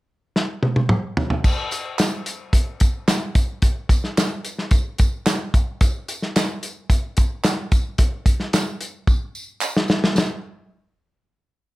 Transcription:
0.36 snare medium
0.63 high tom medium
0.76 high tom medium
0.89 mid tom medium
1.17 floor tom medium
1.30 floor tom medium
1.44 kick medium
1.44 crash medium
1.44 tambourine soft
1.71 closed hi-hat medium
1.71 tambourine soft
1.99 snare loud
1.99 clap medium
1.99 closed hi-hat medium
1.99 tambourine medium
2.26 closed hi-hat medium
2.26 tambourine soft
2.53 kick medium
2.53 closed hi-hat medium
2.53 tambourine soft
2.80 kick medium
2.80 closed hi-hat medium
2.80 tambourine soft
3.08 snare loud
3.08 clap medium
3.08 closed hi-hat loud
3.08 tambourine medium
3.35 kick medium
3.35 closed hi-hat medium
3.35 tambourine soft
3.62 kick medium
3.62 closed hi-hat medium
3.62 tambourine soft
3.89 kick medium
3.89 closed hi-hat medium
3.89 tambourine soft
4.04 snare soft
4.17 snare loud
4.17 clap medium
4.17 closed hi-hat medium
4.17 tambourine medium
4.45 closed hi-hat medium
4.45 tambourine soft
4.58 snare soft
4.71 kick medium
4.71 closed hi-hat medium
4.71 tambourine soft
4.98 kick medium
4.98 closed hi-hat medium
4.98 tambourine soft
5.26 snare loud
5.26 clap loud
5.26 closed hi-hat loud
5.26 tambourine medium
5.54 kick medium
5.54 closed hi-hat medium
5.54 tambourine soft
5.81 kick medium
5.81 closed hi-hat medium
5.81 tambourine soft
6.08 closed hi-hat medium
6.08 tambourine soft
6.22 snare soft
6.36 snare loud
6.36 clap medium
6.36 closed hi-hat medium
6.36 tambourine medium
6.63 closed hi-hat medium
6.63 tambourine soft
6.90 kick medium
6.90 closed hi-hat medium
6.90 tambourine soft
7.17 kick medium
7.17 closed hi-hat medium
7.17 tambourine soft
7.45 snare loud
7.45 clap medium
7.45 closed hi-hat loud
7.45 tambourine loud
7.72 kick loud
7.72 closed hi-hat medium
7.72 tambourine soft
7.98 kick loud
7.98 closed hi-hat medium
7.98 tambourine soft
8.26 kick medium
8.26 closed hi-hat medium
8.26 tambourine medium
8.40 snare soft
8.53 snare loud
8.53 clap medium
8.53 closed hi-hat medium
8.53 tambourine medium
8.81 closed hi-hat medium
8.81 tambourine soft
9.07 kick medium
9.07 tambourine soft
9.35 tambourine medium
9.61 clap medium
9.61 tambourine medium
9.77 snare medium
9.88 snare medium
9.88 tambourine soft
10.04 snare medium
10.16 snare medium
10.16 tambourine medium

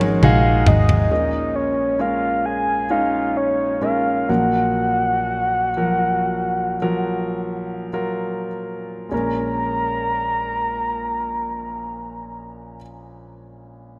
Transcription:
0.00 0.18 G#1 loud
0.00 0.23 G#3 medium
0.00 0.23 D#4 medium
0.00 0.24 F#4 medium
0.00 0.23 G#4 medium
0.00 0.21 A#4 medium
0.00 0.22 C#5 loud
0.00 1.13 C#5 medium
0.00 high tom medium
0.22 0.63 A#1 loud
0.22 1.06 G#3 medium
0.22 1.06 D#4 medium
0.22 1.07 F#4 medium
0.22 1.07 G#4 loud
0.22 0.69 F5 medium
0.22 mid tom medium
0.66 1.08 G#1 medium
0.66 1.11 D#5 loud
0.66 floor tom loud
0.89 floor tom loud
1.11 4.26 A#1 soft
1.11 4.26 A#2 medium
1.11 1.95 G#3 medium
1.11 1.95 C#4 medium
1.11 1.95 A#4 medium
1.11 1.57 D#5 medium
1.56 2.02 C#5 medium
1.99 2.85 G#3 medium
1.99 2.85 C#4 medium
1.99 2.85 A#4 medium
1.99 2.47 F5 medium
2.46 2.92 G#5 loud
2.90 3.77 G#3 medium
2.90 3.78 C#4 medium
2.90 3.78 D#4 medium
2.90 3.38 F5 medium
3.37 3.84 C#5 medium
3.81 4.29 G#3 medium
3.81 4.29 C#4 medium
3.81 4.28 A#4 medium
3.81 4.31 F5 medium
4.29 8.48 A#1 soft
4.29 8.47 A#2 soft
4.29 5.69 F3 medium
4.29 5.69 F#3 medium
4.29 5.70 A#4 medium
4.29 7.93 F#5 loud
5.77 6.76 F3 medium
5.77 6.76 F#3 medium
5.77 6.77 A#4 medium
6.82 7.87 F3 medium
6.82 7.87 F#3 medium
6.82 7.87 A#4 medium
7.93 9.06 F#3 medium
7.93 9.06 F4 soft
7.93 9.06 A#4 medium
9.09 12.78 A#1 medium
9.09 12.75 G#3 soft
9.09 12.77 C#4 soft
9.13 12.80 A#4 medium
9.13 12.79 A#5 medium

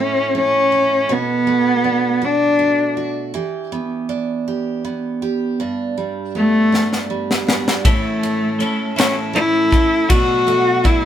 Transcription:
0.00 1.09 A2 medium
0.00 0.34 A3 medium
0.00 0.36 C#4 medium
0.00 1.17 C#4 medium
0.00 0.71 E4 medium
0.35 1.47 A3 medium
0.35 1.13 C#4 loud
0.72 1.09 E4 medium
1.09 3.35 B2 medium
1.09 2.26 B3 loud
1.09 2.20 F#4 medium
1.47 2.58 A3 medium
1.84 4.09 D4 medium
2.22 3.08 D4 loud
2.22 2.96 F#4 medium
2.59 3.42 A3 medium
2.97 3.34 F#4 medium
3.34 5.59 E3 medium
3.34 4.47 G4 medium
3.72 4.84 B3 medium
4.09 5.61 D4 medium
4.48 5.22 G4 medium
4.85 5.97 B3 medium
5.22 5.60 G4 medium
5.60 7.85 G2 medium
5.60 6.71 D4 medium
5.98 7.09 G3 medium
6.35 7.07 A3 loud
6.35 7.92 B3 medium
6.72 7.45 D4 medium
6.72 snare medium
6.93 snare medium
7.10 7.92 G3 medium
7.31 snare medium
7.47 7.65 B3 medium
7.47 7.84 D4 medium
7.47 snare medium
7.68 snare medium
7.85 8.60 A2 medium
7.85 10.09 A2 medium
7.85 8.60 E3 medium
7.85 8.59 A3 medium
7.85 8.94 A3 medium
7.85 8.60 C#4 medium
7.85 8.60 E4 medium
7.85 8.95 E4 medium
7.85 8.62 A4 medium
7.85 kick loud
7.85 ride medium
8.23 9.33 A3 medium
8.23 ride soft
8.59 8.97 A3 medium
8.59 10.17 C#4 medium
8.59 8.97 C#4 medium
8.59 8.96 E4 medium
8.59 8.95 A4 medium
8.59 ride soft
8.96 9.73 A2 medium
8.96 9.73 E3 medium
8.96 9.73 A3 medium
8.96 9.15 C#4 medium
8.96 9.72 C#4 medium
8.96 9.69 E4 medium
8.96 9.71 E4 medium
8.96 9.71 A4 medium
8.96 snare loud
8.96 ride medium
9.33 10.46 A3 medium
9.33 10.11 E4 loud
9.33 ride soft
9.71 10.09 A3 soft
9.71 10.09 C#4 soft
9.71 10.09 E4 medium
9.71 10.10 E4 medium
9.71 10.09 A4 medium
9.71 kick medium
9.71 ride soft
10.08 10.84 B2 medium
10.08 11.05 B2 medium
10.08 10.82 F#3 medium
10.08 10.84 A3 medium
10.08 10.85 D4 medium
10.08 10.86 F#4 loud
10.08 11.05 F#4 medium
10.08 10.85 F#4 medium
10.08 kick loud
10.08 ride medium
10.47 11.05 A3 medium
10.47 ride soft
10.84 11.05 F#3 medium
10.84 11.05 A3 medium
10.84 11.05 D4 medium
10.84 11.05 E4 loud
10.84 11.05 F#4 medium
10.84 kick medium
10.84 ride soft

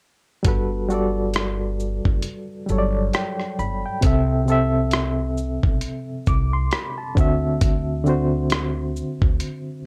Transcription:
0.43 2.01 G1 loud
0.43 0.83 G3 medium
0.43 0.84 F#4 medium
0.43 0.85 A4 medium
0.43 kick loud
0.43 closed hi-hat medium
0.48 0.86 B4 medium
0.89 2.43 G3 medium
0.89 2.44 F#4 medium
0.89 2.45 A4 medium
0.89 shaker soft
0.94 2.46 D5 medium
1.33 cross-stick loud
1.33 closed hi-hat medium
1.80 shaker soft
2.05 2.22 F#1 medium
2.05 kick medium
2.22 closed hi-hat medium
2.66 3.09 G1 medium
2.66 3.85 F#3 medium
2.66 3.84 G3 medium
2.66 3.86 A4 medium
2.66 shaker soft
2.72 2.78 C#5 medium
2.78 3.90 D5 medium
3.13 3.57 G5 medium
3.13 cross-stick loud
3.13 closed hi-hat soft
3.40 cross-stick soft
3.59 3.82 G1 medium
3.59 3.83 B5 medium
3.59 shaker soft
3.86 4.28 G5 medium
4.01 5.59 C2 loud
4.01 4.41 C3 medium
4.01 4.42 C4 medium
4.01 4.43 A4 medium
4.01 kick loud
4.01 closed hi-hat medium
4.07 4.44 E5 medium
4.46 6.01 C3 medium
4.46 6.02 C4 medium
4.46 shaker soft
4.50 6.03 A4 medium
4.50 6.04 E5 medium
4.91 cross-stick loud
4.91 closed hi-hat medium
5.38 shaker soft
5.63 5.81 B1 medium
5.63 kick medium
5.81 closed hi-hat medium
6.27 6.67 C2 medium
6.27 6.52 D6 medium
6.27 kick loud
6.27 shaker soft
6.53 6.71 C6 medium
6.71 6.97 B5 medium
6.71 cross-stick loud
6.71 closed hi-hat soft
6.98 7.40 A5 medium
7.15 9.00 D2 loud
7.15 7.94 D3 medium
7.15 7.95 C4 medium
7.15 7.95 F#4 medium
7.15 kick loud
7.15 shaker soft
7.20 7.96 E5 medium
7.61 kick loud
7.61 closed hi-hat medium
8.04 9.59 D3 medium
8.04 9.60 C4 medium
8.04 9.61 F#4 medium
8.04 shaker soft
8.09 9.62 C5 medium
8.50 cross-stick loud
8.50 closed hi-hat medium
8.96 shaker soft
9.22 9.39 D2 medium
9.22 kick medium
9.40 closed hi-hat medium

